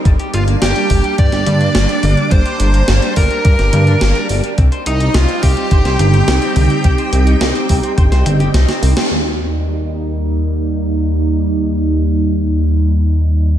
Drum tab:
HH |xxxxxxoxxxxxxxox|xxxxxxoxxxxxxxox|xxxxxxoxxxxxxxox|xxxxxxoxxxxxxxo-|
SD |----o----o--o---|----o----o--o---|----o----o--o---|----o----o--oo-o|
T2 |----------o---o-|----------o-----|----------o---o-|----------o-----|
BD |o-----o-o-------|o-----o-o-------|o-----o-o-------|o-----o-o-------|

HH |----------------|----------------|
SD |----------------|----------------|
T2 |----------------|----------------|
BD |----------------|----------------|